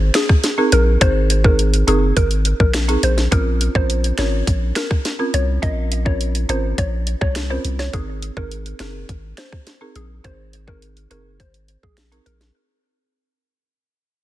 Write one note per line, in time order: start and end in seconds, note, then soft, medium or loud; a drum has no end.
0.00 0.11 G#1 loud
0.14 0.27 G#4 medium
0.14 finger snap loud
0.14 snare loud
0.14 closed hi-hat medium
0.29 kick medium
0.29 cross-stick medium
0.44 snare medium
0.44 closed hi-hat medium
0.58 0.72 C4 medium
0.58 0.72 D#4 medium
0.58 0.72 G#4 medium
0.58 0.72 A#4 medium
0.72 0.97 A#1 medium
0.72 0.85 A#4 medium
0.72 closed hi-hat medium
1.01 1.84 G#1 loud
1.01 1.15 C4 medium
1.01 1.15 D#4 medium
1.01 1.16 G#4 medium
1.01 1.16 A#4 loud
1.01 1.14 C5 loud
1.01 kick loud
1.01 closed hi-hat medium
1.30 closed hi-hat medium
1.44 1.59 C4 medium
1.44 1.59 D#4 medium
1.44 1.59 G#4 medium
1.44 1.59 A#4 medium
1.44 1.57 A#4 medium
1.44 kick loud
1.59 closed hi-hat medium
1.74 closed hi-hat soft
1.88 2.13 F#1 medium
1.88 2.02 C4 medium
1.88 2.02 D#4 medium
1.88 2.02 G#4 medium
1.88 2.00 G#4 medium
1.88 2.02 A#4 medium
1.88 closed hi-hat medium
2.17 2.54 G#1 loud
2.17 2.29 A#4 medium
2.17 kick medium
2.17 closed hi-hat medium
2.31 closed hi-hat soft
2.45 closed hi-hat medium
2.60 2.97 A#1 medium
2.60 2.72 A#4 medium
2.60 kick medium
2.74 finger snap medium
2.74 snare loud
2.74 closed hi-hat medium
2.88 3.03 C4 medium
2.88 3.03 D#4 medium
2.88 3.03 G#4 medium
2.88 3.03 A#4 medium
2.88 closed hi-hat soft
3.03 3.28 A#1 medium
3.03 3.16 C5 medium
3.03 closed hi-hat medium
3.18 snare medium
3.32 3.69 A#1 loud
3.32 3.46 C4 medium
3.32 3.46 C#4 medium
3.32 3.46 F4 medium
3.32 3.45 A#4 loud
3.32 3.46 A#4 loud
3.32 kick loud
3.32 closed hi-hat medium
3.61 closed hi-hat medium
3.75 4.12 A#1 loud
3.75 3.89 C4 medium
3.75 3.89 C#4 medium
3.75 3.90 F4 medium
3.75 3.90 A#4 medium
3.75 4.00 C5 medium
3.75 kick loud
3.90 closed hi-hat medium
4.04 closed hi-hat medium
4.18 4.43 G#1 loud
4.18 4.33 C4 medium
4.18 4.33 C#4 medium
4.18 4.33 F4 medium
4.18 4.33 A#4 medium
4.18 4.43 C#5 medium
4.18 finger snap loud
4.18 snare loud
4.18 closed hi-hat medium
4.47 4.72 A#1 loud
4.47 kick medium
4.47 closed hi-hat medium
4.75 4.89 A#4 medium
4.75 finger snap medium
4.75 snare loud
4.75 closed hi-hat medium
4.91 kick medium
4.91 cross-stick medium
5.05 snare medium
5.05 closed hi-hat medium
5.19 5.34 C4 medium
5.19 5.34 C#4 medium
5.19 5.34 F4 medium
5.19 5.34 A#4 medium
5.34 5.59 C2 medium
5.34 5.46 C#5 medium
5.34 closed hi-hat medium
5.62 6.45 A#1 loud
5.62 5.77 C4 medium
5.62 5.77 C#4 medium
5.62 5.77 F4 medium
5.62 5.77 A#4 loud
5.62 5.75 D#5 loud
5.62 kick loud
5.62 closed hi-hat medium
5.92 closed hi-hat medium
6.06 6.20 C4 medium
6.06 6.20 C#4 medium
6.06 6.20 F4 medium
6.06 6.20 A#4 medium
6.06 6.18 C#5 medium
6.06 kick medium
6.21 closed hi-hat medium
6.35 closed hi-hat medium
6.49 6.74 G#1 medium
6.49 6.63 C4 medium
6.49 6.64 C#4 medium
6.49 6.64 F4 medium
6.49 6.64 A#4 medium
6.49 6.62 C5 medium
6.49 closed hi-hat medium
6.78 7.15 A#1 loud
6.78 6.91 C#5 medium
6.78 kick loud
6.78 closed hi-hat medium
7.07 closed hi-hat medium
7.21 7.59 C2 medium
7.21 7.34 C#5 medium
7.21 kick medium
7.21 cross-stick medium
7.35 finger snap medium
7.35 snare loud
7.35 closed hi-hat medium
7.50 7.64 C4 medium
7.50 7.65 C#4 medium
7.50 7.65 F4 medium
7.50 7.65 A#4 medium
7.50 7.63 C5 medium
7.65 7.89 C2 medium
7.65 closed hi-hat medium
7.79 7.92 C#5 medium
7.79 snare medium
7.93 8.31 G#1 loud
7.93 8.08 C4 medium
7.93 8.08 D#4 medium
7.93 8.06 G#4 loud
7.93 8.08 G#4 medium
7.93 8.08 A#4 loud
7.93 kick loud
7.93 closed hi-hat medium
8.22 closed hi-hat medium
8.37 8.74 G#1 loud
8.37 8.51 C4 medium
8.37 8.51 D#4 medium
8.37 8.51 G#4 medium
8.37 8.62 A#4 medium
8.37 8.51 A#4 medium
8.37 kick loud
8.51 closed hi-hat medium
8.66 closed hi-hat soft
8.79 9.05 F#1 medium
8.79 8.94 C4 medium
8.79 8.94 D#4 medium
8.79 8.94 G#4 medium
8.79 9.05 A#4 medium
8.79 8.94 A#4 medium
8.79 finger snap loud
8.79 snare loud
8.79 closed hi-hat medium
9.09 9.34 G#1 loud
9.09 kick medium
9.09 closed hi-hat medium
9.37 9.50 C5 medium
9.37 finger snap loud
9.37 snare loud
9.37 closed hi-hat medium
9.52 kick medium
9.52 cross-stick medium
9.67 snare medium
9.67 closed hi-hat medium
9.81 9.95 C4 medium
9.81 9.95 D#4 medium
9.81 9.95 G#4 medium
9.81 9.96 A#4 medium
9.96 10.20 A#1 medium
9.96 10.08 G#4 medium
9.96 closed hi-hat medium
10.24 11.07 G#1 loud
10.24 10.38 C4 medium
10.24 10.39 D#4 medium
10.24 10.39 G#4 medium
10.24 10.39 A#4 loud
10.24 10.37 C5 loud
10.24 kick loud
10.24 closed hi-hat medium
10.53 closed hi-hat medium
10.68 10.82 C4 medium
10.68 10.82 D#4 medium
10.68 10.82 G#4 medium
10.68 10.82 A#4 medium
10.68 10.80 A#4 medium
10.68 kick loud
10.82 closed hi-hat medium
10.97 closed hi-hat soft
11.11 11.41 F#1 loud
11.11 11.25 C4 medium
11.11 11.25 D#4 medium
11.11 11.25 G#4 medium
11.11 11.25 A#4 medium
11.11 11.23 A#4 medium
11.11 closed hi-hat medium
11.40 11.77 G#1 loud
11.40 11.52 C5 medium
11.40 kick medium
11.40 closed hi-hat medium
11.54 closed hi-hat medium
11.68 closed hi-hat medium
11.83 12.20 A#1 medium
11.83 11.95 G#4 medium
11.83 kick medium
11.97 finger snap medium
11.97 snare loud
11.97 closed hi-hat medium
12.12 12.26 C4 medium
12.12 12.26 D#4 medium
12.12 12.26 G#4 medium
12.12 12.26 A#4 medium
12.12 closed hi-hat soft
12.26 12.51 A#1 medium
12.26 12.38 A#4 medium
12.26 closed hi-hat medium
12.41 snare medium